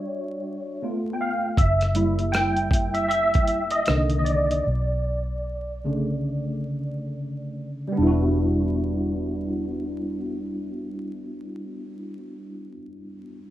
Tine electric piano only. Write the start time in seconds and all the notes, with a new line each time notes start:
Already playing: G3 D4 F#4 C#5
0.82 A3 B3 F4
1.13 G5
1.21 F5
1.58 E5
1.95 G3 A#3 E4
2.32 G5
2.94 E5
3.09 E5
3.71 D#5
3.87 D3 D#3 A#3
4.18 D#5
4.24 D5
5.84 C#3 D3 A3
7.87 G3
7.92 B3
7.97 D4
8.02 E4
8.07 F#4